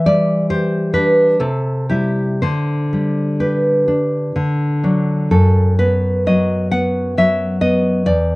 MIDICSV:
0, 0, Header, 1, 2, 480
1, 0, Start_track
1, 0, Tempo, 888889
1, 751, Tempo, 1039861
1, 1231, Tempo, 956938
1, 1232, Time_signature, 3, 2, 24, 8
1, 3151, Tempo, 903614
1, 4265, End_track
2, 0, Start_track
2, 0, Title_t, "Nylon-string guitar"
2, 0, Program_c, 0, 24
2, 0, Note_on_c, 0, 52, 58
2, 33, Note_on_c, 0, 74, 71
2, 36, Note_on_c, 0, 55, 39
2, 260, Note_off_c, 0, 74, 0
2, 270, Note_on_c, 0, 72, 63
2, 271, Note_on_c, 0, 67, 45
2, 497, Note_off_c, 0, 72, 0
2, 505, Note_on_c, 0, 62, 39
2, 506, Note_on_c, 0, 71, 66
2, 729, Note_off_c, 0, 52, 0
2, 742, Note_off_c, 0, 71, 0
2, 752, Note_off_c, 0, 62, 0
2, 752, Note_off_c, 0, 67, 0
2, 754, Note_off_c, 0, 55, 0
2, 754, Note_on_c, 0, 69, 60
2, 756, Note_on_c, 0, 48, 50
2, 977, Note_off_c, 0, 69, 0
2, 984, Note_on_c, 0, 67, 58
2, 986, Note_on_c, 0, 55, 36
2, 988, Note_on_c, 0, 64, 40
2, 1213, Note_off_c, 0, 55, 0
2, 1214, Note_off_c, 0, 64, 0
2, 1219, Note_off_c, 0, 48, 0
2, 1221, Note_off_c, 0, 67, 0
2, 1226, Note_on_c, 0, 72, 63
2, 1229, Note_on_c, 0, 50, 47
2, 1481, Note_on_c, 0, 55, 35
2, 1695, Note_off_c, 0, 72, 0
2, 1717, Note_on_c, 0, 67, 37
2, 1719, Note_on_c, 0, 71, 46
2, 1955, Note_off_c, 0, 55, 0
2, 1957, Note_on_c, 0, 62, 35
2, 2176, Note_off_c, 0, 50, 0
2, 2178, Note_off_c, 0, 71, 0
2, 2196, Note_off_c, 0, 62, 0
2, 2197, Note_off_c, 0, 67, 0
2, 2197, Note_on_c, 0, 50, 47
2, 2437, Note_on_c, 0, 54, 32
2, 2439, Note_on_c, 0, 62, 38
2, 2659, Note_off_c, 0, 54, 0
2, 2659, Note_off_c, 0, 62, 0
2, 2664, Note_off_c, 0, 50, 0
2, 2676, Note_on_c, 0, 42, 47
2, 2676, Note_on_c, 0, 69, 60
2, 2906, Note_off_c, 0, 69, 0
2, 2915, Note_on_c, 0, 71, 62
2, 2920, Note_on_c, 0, 59, 39
2, 3141, Note_off_c, 0, 71, 0
2, 3155, Note_on_c, 0, 54, 37
2, 3157, Note_on_c, 0, 75, 61
2, 3387, Note_off_c, 0, 75, 0
2, 3391, Note_off_c, 0, 59, 0
2, 3394, Note_on_c, 0, 78, 63
2, 3398, Note_on_c, 0, 59, 35
2, 3622, Note_off_c, 0, 78, 0
2, 3633, Note_off_c, 0, 54, 0
2, 3638, Note_on_c, 0, 54, 39
2, 3641, Note_on_c, 0, 76, 64
2, 3862, Note_off_c, 0, 76, 0
2, 3865, Note_off_c, 0, 59, 0
2, 3870, Note_on_c, 0, 75, 64
2, 3871, Note_on_c, 0, 59, 39
2, 4087, Note_off_c, 0, 42, 0
2, 4101, Note_off_c, 0, 75, 0
2, 4106, Note_off_c, 0, 59, 0
2, 4108, Note_on_c, 0, 74, 66
2, 4112, Note_on_c, 0, 40, 51
2, 4113, Note_off_c, 0, 54, 0
2, 4265, Note_off_c, 0, 40, 0
2, 4265, Note_off_c, 0, 74, 0
2, 4265, End_track
0, 0, End_of_file